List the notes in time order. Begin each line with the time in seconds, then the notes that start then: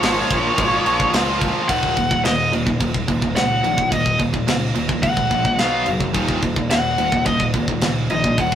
Already playing: C#5
0.01 G#1 A#2 F3, snare, crash
0.09 A#2 F3
0.18 A#2 F3
0.25 A#2 F3
0.30 A#1 A#2 F3, kick, crash
0.40 A#2 F3
0.47 A#2 F3
0.55 G#1 A#2 F3, kick, crash
0.62 A#2 F3
0.69 A#2 F3
0.77 A#2 F3
0.85 A#1 A#2 F3, crash
0.93 A#2 F3
1.00 A#2 F3, kick
1.09 A#2 F3
1.13 C#2 A#2 F3, snare, crash
1.23 A#2 F3
1.30 A#2 F3
1.38 A#2 F3, kick, crash
1.46 A#2 F3
1.54 A#2 F3
1.60 A#2 F3
1.68 D#1 D#2 A#2 D#3 F#5, kick, crash
1.83 kick
1.97 D#1 D#2 A#2, kick, crash
2.11 D#2 A#2, kick
2.24 D#1 D#2 A#2 D#5, snare, crash
2.52 D#1 D#2 A#2, crash
2.66 D#2 A#2, kick
2.80 D#1 D#2 A#2, kick, crash
2.94 kick
3.08 D#1 D#2 A#2, kick, crash
3.22 D#2 A#2, kick
3.36 C#2 D#2 A#2 F#5, snare, crash
3.63 A#1 D#2 A#2, crash
3.77 D#2 A#2, kick
3.92 D#1 D#2 A#2 D#5, kick, crash
4.06 kick
4.19 D#1 D#2 A#2, kick, crash
4.34 D#2 A#2, kick
4.47 C#2 D#2 A#2, snare, crash
4.75 D#1 D#2 A#2, crash
4.89 D#2 A#2, kick
5.03 C#2 D#2 A#2 F#5, kick, crash
5.17 kick
5.31 A#1 D#2 A#2, kick, crash
5.45 D#2 A#2, kick
5.58 B1 B2 F#3 B3 F5, snare, crash
5.86 F#1 B2 F#3, crash
6.00 B2 F#3, kick
6.14 D#1 D#2 A#2 D#3, kick, crash
6.28 kick
6.43 D#1 D#2 A#2, kick, crash
6.56 D#2 A#2, kick
6.70 D#1 D#2 A#2 F#5, snare, crash
6.98 D#1 D#2 A#2, crash
7.12 D#2 A#2, kick
7.26 D#1 D#2 A#2 D#5, kick, crash
7.40 kick
7.53 D#1 D#2 A#2, kick, crash
7.68 D#2 A#2, kick
7.81 C#2 D#2 A#2, snare, crash
8.10 A#1 D#2 A#2 D#5, crash
8.24 D#2 A#2, kick
8.38 D#1 D#2 A#2 F#5, kick, crash